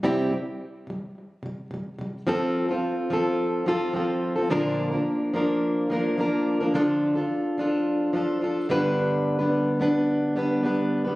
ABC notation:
X:1
M:4/4
L:1/16
Q:1/4=108
K:F
V:1 name="Steel-string acoustic guitar"
[C,G,CEG]2 [C,G,]2 z2 [C,G,]2 z2 [C,G,]2 [C,G,]2 [C,G,]2 | [F,CFA]3 [CFA]3 [F,CFA]4 [F,CFA]2 [F,CFA]3 [CFA] | [B,,D,F,B,DB]3 [F,B,DB]3 [F,B,DB]4 [F,B,DB]2 [F,B,DB]3 [F,B,DB] | [D,F,DFA]3 [DFA]3 [F,DFA]4 [F,DFA]2 [F,DFA]2 [G,,D,G,=B,D=B]2- |
[G,,D,G,=B,D=B]3 [G,B,DB]3 [G,B,DB]4 [G,B,DB]2 [G,B,DB]3 [G,B,DB] |]